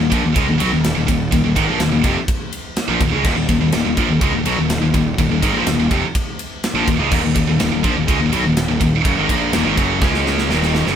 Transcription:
0.00 D#2 A#2
0.11 A#1 A#2 F3, kick, ride
0.23 D#1 D#2 A#2
0.36 C#2 C#3 G#3, kick, ride
0.48 D#1 D#2 A#2
0.60 B1 B2 F#3, ride
0.72 D#1 D#2 A#2
0.84 snare, ride
0.96 D#1 D#2 A#2
1.08 D#1 D#2 A#2, kick, ride
1.32 D#1 D#2 A#2, kick, ride
1.43 D#1 D#2 A#2
1.55 G#1 G#2 D#3, kick, ride
1.68 A#1 A#2 F3
1.79 D#1 D#2 A#2, snare, ride
1.92 D#1 D#2 A#2
2.03 F1 F2 C3, kick, ride
2.28 kick, ride
2.53 ride
2.76 snare, ride
2.88 A#1 A#2 F3
3.00 D#1 D#2 A#2, kick, ride
3.12 C#2 C#3 G#3
3.23 D#1 D#2 A#2, kick, crash
3.35 D#1 D#2 A#2
3.47 D#1 D#2 A#2, kick, ride
3.59 D#1 D#2 A#2
3.72 D#1 D#2 A#2, snare, ride
3.84 D#1 D#2 A#2
3.96 A#1 A#2 F3, kick, ride
4.08 D#1 D#2 A#2
4.19 C#2 C#3 G#3, kick, ride
4.32 D#1 D#2 A#2
4.44 B1 B2 F#3, ride
4.56 D#1 D#2 A#2
4.70 snare, ride
4.81 D#1 D#2 A#2
4.93 D#1 D#2 A#2, kick, ride
5.17 D#1 D#2 A#2, kick, ride
5.28 D#1 D#2 A#2
5.41 G#1 G#2 D#3, kick, ride
5.53 A#1 A#2 F3
5.65 D#1 D#2 A#2, snare, ride
5.77 D#1 D#2 A#2
5.89 F1 F2 C3, kick, ride
6.15 kick, ride
6.39 ride
6.64 snare, ride
6.74 A#1 A#2 F3
6.87 D#1 D#2 A#2, kick, ride
6.99 C#2 C#3 G#3
7.11 D#1 D#2 A#2, kick, crash
7.23 D#1 D#2 A#2
7.35 D#1 D#2 A#2, kick, ride
7.47 D#1 D#2 A#2
7.60 D#1 D#2 A#2, snare, ride
7.71 D#1 D#2 A#2
7.83 A#1 A#2 F3, kick, ride
7.95 D#1 D#2 A#2
8.07 C#2 C#3 G#3, kick, ride
8.20 D#1 D#2 A#2
8.31 B1 B2 F#3, ride
8.44 D#1 D#2 A#2
8.57 snare, ride
8.67 D#1 D#2 A#2
8.80 D#1 D#2 A#2, kick, ride
9.03 F#1 F#2 C#3, kick, ride
9.17 G#1 G#2 D#3
9.28 A#1 A#2 F3 A#3, kick, ride
9.53 D#1 D#2 A#2, snare, ride
9.64 G#1 G#2 D#3
9.75 F#1 F#2 C#3 F#3, kick, ride
9.99 C#2 C#3 G#3 C#4, kick, snare
10.14 snare
10.26 snare
10.38 snare
10.48 D#1 D#2 A#2 D#3, snare
10.63 snare
10.75 snare
10.85 F#1 F#2 C#3, snare

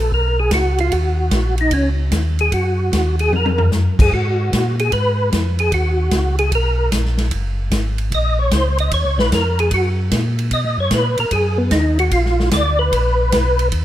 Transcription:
Already playing: A#1
0.00 A4
0.12 B1 A#4, kick
0.39 G#4
0.51 C#2 F#4, kick, snare, hi-hat pedal, ride
0.78 F4, ride
0.91 D#2 F#4, kick, ride
1.31 A#1, kick, snare, hi-hat pedal, ride
1.58 D#4, ride
1.71 C#2 C#4, kick, ride
2.11 D#2, kick, snare, hi-hat pedal, ride
2.39 G#4, ride
2.52 F#2 F#4, kick, ride
2.92 D#2, kick, snare, hi-hat pedal, ride
3.19 G#4, ride
3.31 F2, high tom
3.36 A#4
3.45 high tom
3.58 floor tom
3.72 F#2, snare, hi-hat pedal
3.99 G#4, kick, crash
4.12 G#2 F#4, kick
4.52 A#2, kick, snare, hi-hat pedal, ride
4.79 G#4, ride
4.92 G#2 B4, kick, ride
5.32 F2, kick, snare, hi-hat pedal, ride
5.59 G#4, ride
5.71 D#2 F#4, kick, ride
6.11 C#2, kick, snare, hi-hat pedal, ride
6.38 G#4, ride
6.51 B1 A#4, kick, ride
6.92 A#1, kick, snare, hi-hat pedal, ride
7.05 snare
7.17 snare, ride
7.31 F#1, kick, ride
7.71 G#1, kick, snare, hi-hat pedal, ride
7.98 ride
8.11 A#1 D#5, kick, ride
8.39 C#5
8.51 C#2 C5, kick, snare, hi-hat pedal, ride
8.78 D#5, ride
8.91 D#2 C#5, kick, ride
9.05 C#2
9.18 A#1 B4, snare
9.32 F2 A#4, kick, snare, hi-hat pedal, ride
9.59 G#4, ride
9.71 F#2 F#4, kick, ride
10.11 A#2, kick, snare, hi-hat pedal, ride
10.38 ride
10.51 B2 D#5, kick, ride
10.64 A#2
10.78 F#2 C#5
10.91 A#2 B4, kick, snare, hi-hat pedal, ride
11.17 A#2 A#4, ride
11.31 F#2 G#4, kick, ride
11.58 B3
11.71 D#2 D#4, kick, snare, hi-hat pedal, ride
11.99 F#4, ride
12.11 A#1 F4, kick, ride
12.26 snare
12.40 snare
12.51 D2 D5, kick, snare, hi-hat pedal, ride
12.79 B4
12.92 A#1, kick, ride
13.32 B1, kick, snare, hi-hat pedal, ride
13.59 ride
13.72 D#2, kick, ride

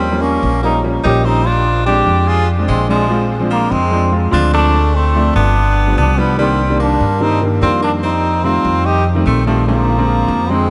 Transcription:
Already playing: D#2 G3 C4
0.12 F3 G3 A#3 C#4
0.21 A#3 C#4
0.43 A#1
0.63 F3 G3 A#3 C#4 D#4
0.83 F3 G3 A#3 C#4
1.04 A#1 F3 G3 A#3 C#4 D#4 G4
1.25 C4 D#4
1.46 D4 F4
1.86 F3 G#3 C4 D4 G4
2.07 F2
2.28 F4 G#4
2.58 F3 G#3 C4 D4
2.68 A#1 G#3 C4
2.88 F3 G#3 C4 D4
3.08 F3 G#3 C4 F4
3.40 F3 G#3 C4 D4
3.50 F3 A#3
3.71 F2 G#3 C4
3.91 F3 G#3 C4 D4
4.11 F3 G#3 C4 F4
4.31 D2 F3 G#3 C4 D4 F4
4.53 A3 D4
4.94 A3 C4
5.15 F3 A3 C4 D4
5.35 G1 B3 D4
5.87 F3 G3 B3 D4
5.97 C2 B3 D4
6.17 F3 G3 B3 D4
6.38 D#3 G3 A#3 C4 D4
6.70 D#3 G3 A#3 D4
6.80 A#3 D4
7.00 G2
7.20 D#3 G3 A#3 C4 D4 D#4
7.41 D#3 G3 A#3 D4
7.61 F2 D#3 G3 A#3 C4 D4 F4
7.83 A#3 D4
8.03 C4 D#4
8.44 D#3 G3 A3 C4 F4
8.65 F2
8.85 D#4 G4
9.15 D#3 G3 A3 C4
9.26 A#1 A3 C4
9.46 D#3 F3 G3 A3 C4
9.67 D3 F3 G#3 A#3 C4
9.98 D3 F3 G#3 C4
10.28 F2
10.49 D3 F3 G#3 C4

